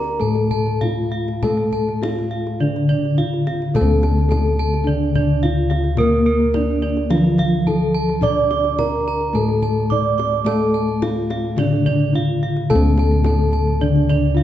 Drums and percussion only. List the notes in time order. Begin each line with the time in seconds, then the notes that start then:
0.04 kendang slap
0.35 kendang slap
0.51 kendang low
0.67 kendang slap
0.81 kendang high, kendang low
1.28 kendang slap
1.43 kendang low
1.57 kendang slap
1.73 kendang low
1.89 kendang slap
2.03 kendang high
2.18 kendang slap
2.47 kendang slap
2.76 kendang slap
2.90 kendang low
3.05 kendang slap
3.19 kendang low
3.33 kendang slap
3.47 kendang high
3.62 kendang slap
3.75 kendang low
4.03 kendang slap, kendang high
4.18 kendang slap
4.32 kendang slap, kendang high, kendang low
4.59 kendang slap
4.74 kendang slap
4.88 kendang slap
5.15 kendang slap, kendang low
5.43 kendang low
5.71 kendang slap, kendang high
5.84 kendang slap
5.97 kendang high, kendang low
6.26 kendang slap
6.40 kendang slap
6.54 kendang slap, kendang high, kendang low
6.82 kendang slap
6.97 kendang slap
7.11 kendang slap, kendang high
7.24 kendang slap
7.38 kendang slap, kendang low
7.66 kendang low
8.09 kendang slap
8.22 kendang low
8.51 kendang slap, kendang high
8.65 kendang slap
8.79 kendang slap, kendang high, kendang low
9.07 kendang slap
9.21 kendang slap
9.35 kendang slap
9.49 kendang slap
9.62 kendang slap, kendang low
9.91 kendang low
10.19 kendang slap, kendang high
10.46 kendang high, kendang low
10.75 kendang slap
10.89 kendang slap
11.02 kendang slap, kendang high, kendang low
11.30 kendang slap, kendang high
11.45 kendang slap
11.58 kendang slap, kendang high
11.73 kendang slap
11.87 kendang slap, kendang low
12.15 kendang low
12.43 kendang slap
12.57 kendang slap
12.71 kendang low
12.98 kendang slap, kendang high
13.11 kendang slap
13.24 kendang slap, kendang high, kendang low
13.52 kendang slap
13.67 kendang slap
13.81 kendang slap
13.96 kendang slap
14.10 kendang slap, kendang low
14.38 kendang low